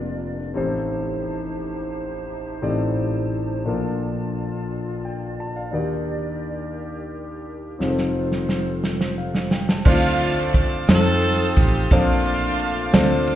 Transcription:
Already playing: F1 F2 A#3 D4 F4 A#4 D5
0.54 A1 A2 C4 D#4 G4 A4 C5 A5
2.62 A1 A2 C4 D#4 G4 A4 D5
3.65 A#1 A#2 D4 F4 A4 A#4 D5
5.05 G5
5.40 A5
5.56 F5
5.71 D#2 D#3 D4 D#4 F#4 G4 A#4 D5
5.79 G4
7.79 F1 F2 C4 D#4 F4 G#4 A4 C5, snare
7.88 A4
7.98 snare
8.32 snare
8.49 snare
8.84 snare
9.01 snare
9.18 F5
9.35 snare
9.51 G5, snare
9.68 A5, snare
9.85 D2 D3 A3 C4 D4 D#4 F4 A4 C5 F5 A5 D6, kick, crash
9.89 C4 F4
10.21 ride bell
10.54 kick, ride bell
10.88 F2 C4 D#4 F4 A4 C5 D#6, snare, ride bell
10.92 C4 D#4 A4
11.22 ride bell
11.56 A1 G4, kick, ride bell
11.91 A#1 A#2 A3 C4 D4 F4 A4 C5 F5 D6, kick, ride bell
12.26 ride bell
12.59 ride bell
12.93 D2 C4 D4 F4 A4 C5, snare, ride bell
13.27 ride bell

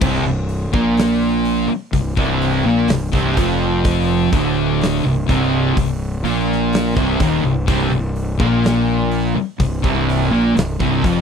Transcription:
0.01 C1 C2 C3, kick, crash
0.22 C1 C2
0.49 open hi-hat
0.72 A#1 A#2 A#3, kick
0.97 snare, open hi-hat
1.45 open hi-hat
1.68 muted fingered electric bass stroke, muted distorted electric guitar stroke, muted overdriven electric guitar stroke
1.92 C1 C2, kick, open hi-hat
2.15 C1 C2 C3, kick
2.42 open hi-hat
2.64 A#1 A#2 A#3
2.88 C1 C2, snare, open hi-hat
3.12 C1 C2 C3, kick
3.16 snare
3.36 F1 F2 F3, kick, open hi-hat
3.84 kick, open hi-hat
4.32 D1 D2 D3, kick, open hi-hat
4.81 snare, open hi-hat
5.05 C1 C2
5.27 C1 C2 C3, kick, open hi-hat
5.75 C1 C2, kick, open hi-hat
6.24 A#1 A#2 A#3, open hi-hat
6.53 snare
6.73 snare, open hi-hat
6.95 C1 C2 C3, kick
7.19 D#1 D#2 D#3, kick, open hi-hat
7.43 C1 C2
7.66 C1 C2 C3, kick, open hi-hat
7.91 C1 C2
8.16 open hi-hat
8.38 A#1 A#2 A#3, kick
8.64 snare, open hi-hat
9.11 open hi-hat
9.36 muted fingered electric bass stroke, muted overdriven electric guitar stroke, muted distorted electric guitar stroke
9.59 C1 C2, kick, open hi-hat
9.82 C1 C2 C3, kick
10.09 open hi-hat
10.30 A#1 A#2 A#3
10.55 C1 C2, open hi-hat
10.59 snare
10.80 C1 C2 C3, kick
11.04 F1 F2 F3, kick, open hi-hat

